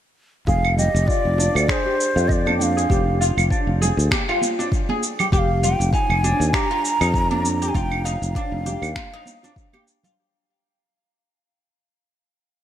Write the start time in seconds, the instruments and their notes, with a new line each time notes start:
0.47 fretless electric bass F1, oud G#4, bansuri F5, kick, shaker
0.65 claves
0.78 oud G4, bansuri D#5, low conga, shaker
0.95 fretless electric bass F1, shaker
1.07 oud F4, bansuri D5, kick, shaker
1.25 fretless electric bass F1
1.38 oud D4, high bongo, high conga, shaker
1.55 fretless electric bass D2, claves, shaker
1.67 oud G#4, bansuri C5 D5, finger snap, kick, shaker
1.85 oud G4
2.00 shaker
2.16 fretless electric bass F2, oud F4, shaker
2.28 bansuri D#5, kick, shaker
2.32 bansuri D5
2.46 oud D4, high conga, claves
2.58 bansuri G5, high conga, shaker
2.63 bansuri F5
2.77 oud G#4, shaker
2.90 fretless electric bass F1, oud G4, kick, shaker
3.21 oud F4, shaker
3.37 fretless electric bass F1, claves, shaker
3.50 oud D4, kick, shaker
3.67 fretless electric bass F1
3.82 oud G#4, high bongo, low conga, shaker
3.97 fretless electric bass D2, shaker
4.11 oud G4, finger snap, kick, high conga, shaker
4.29 oud F4, claves
4.41 high conga, shaker
4.59 oud D4, high bongo, shaker
4.72 kick, shaker
4.89 oud G#4, high conga
5.03 shaker
5.19 oud G4, low conga, claves, shaker
5.32 fretless electric bass F1, oud G4, bansuri G5, kick, shaker
5.38 bansuri F5
5.63 oud F4, bansuri G5, low conga, shaker
5.80 fretless electric bass F1, shaker
5.93 oud D#4, bansuri G#5, kick, shaker
6.09 fretless electric bass F1, claves
6.24 oud D4, high bongo, high conga, shaker
6.40 fretless electric bass D#2, shaker
6.53 oud G4, bansuri A#5, finger snap, kick, shaker
6.71 oud F4
6.85 shaker
7.01 fretless electric bass F2, oud D#4, claves, shaker
7.14 kick, shaker
7.31 oud D4, high conga
7.45 high conga, shaker
7.62 oud G4, shaker
7.68 bansuri G#5
7.75 fretless electric bass F1, oud F4, bansuri G5, kick, shaker
7.92 claves
8.05 oud D#4, bansuri F5, shaker
8.22 fretless electric bass F1, shaker
8.35 oud D4, kick, shaker
8.52 fretless electric bass F1
8.66 oud G4, high bongo, low conga, shaker
8.82 fretless electric bass D#2, claves, shaker
8.96 oud F4, finger snap, kick, high conga, shaker
9.13 oud D#4
9.26 high conga, shaker
9.43 oud D4, high bongo, shaker
9.56 kick, shaker
9.73 oud G4, high conga, claves
9.87 shaker
10.03 oud F4, low conga, shaker